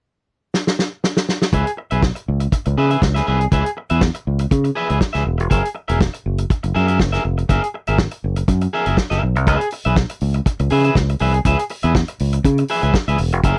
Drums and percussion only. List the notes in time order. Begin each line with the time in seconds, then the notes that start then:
0.54 snare
0.67 snare
0.79 snare
1.04 snare
1.17 snare
1.29 snare
1.42 snare
1.53 kick, closed hi-hat
1.67 closed hi-hat
1.91 closed hi-hat
2.03 kick, snare
2.16 closed hi-hat
2.40 closed hi-hat
2.52 kick, closed hi-hat
2.65 closed hi-hat
2.90 closed hi-hat
3.02 kick, snare
3.16 snare, closed hi-hat
3.41 closed hi-hat
3.52 kick, closed hi-hat
3.66 closed hi-hat
3.90 closed hi-hat
4.01 kick, snare
4.15 closed hi-hat
4.39 closed hi-hat
4.51 kick, closed hi-hat
4.64 closed hi-hat
4.90 closed hi-hat
5.01 kick, snare
5.15 snare, closed hi-hat
5.40 closed hi-hat
5.51 kick, closed hi-hat
5.65 closed hi-hat
5.89 closed hi-hat
6.01 kick, snare
6.14 closed hi-hat
6.38 closed hi-hat
6.50 kick, closed hi-hat
6.64 closed hi-hat
6.88 closed hi-hat
7.00 kick, snare
7.14 snare, closed hi-hat
7.38 closed hi-hat
7.49 kick, closed hi-hat
7.64 closed hi-hat
7.87 closed hi-hat
7.98 kick, snare
8.11 closed hi-hat
8.36 closed hi-hat
8.48 kick, closed hi-hat
8.61 closed hi-hat
8.86 closed hi-hat
8.97 kick, snare
9.11 snare, closed hi-hat
9.36 closed hi-hat
9.47 kick, closed hi-hat
9.61 closed hi-hat
9.71 open hi-hat
9.85 closed hi-hat
9.96 kick, snare
10.09 closed hi-hat
10.21 open hi-hat
10.34 closed hi-hat
10.46 kick, closed hi-hat
10.59 closed hi-hat
10.70 open hi-hat
10.84 closed hi-hat
10.95 kick, snare
11.09 closed hi-hat
11.19 open hi-hat
11.34 closed hi-hat
11.45 kick, closed hi-hat
11.59 closed hi-hat
11.69 open hi-hat
11.83 closed hi-hat
11.95 kick, snare
12.08 closed hi-hat
12.19 open hi-hat
12.33 closed hi-hat
12.44 kick, closed hi-hat
12.58 closed hi-hat
12.68 open hi-hat
12.83 closed hi-hat
12.94 kick, snare
13.08 closed hi-hat
13.18 open hi-hat
13.33 closed hi-hat
13.44 kick, closed hi-hat